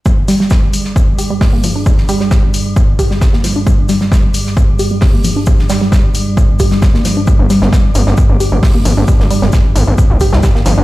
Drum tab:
HH |--o---o---o-o-o-|--o---o---o---o-|--o---o---o-o-o-|--o---o---o---o-|
SH |x-x-x-x-x-x---x-|x-x-x-x-x-x-x-x-|x-x-x-x-x-x---x-|x-x-x-x-x-x-x-x-|
SD |--ooo--o----o---|-o-oo------oooo-|--ooo--o----o---|-oooo------oooo-|
BD |o---o---o---o---|o---o---o-o-o---|o---o---o---o---|o---o---o-o-o---|

HH |--o---o---o-o-o-|--o---o---o---o-|
SH |x-x-x-x-x-x---x-|x-x-x-x-x-x-x-x-|
SD |--ooo--o----o---|-o-oo------oooo-|
BD |o---o---o---o---|o---o---o-o-o---|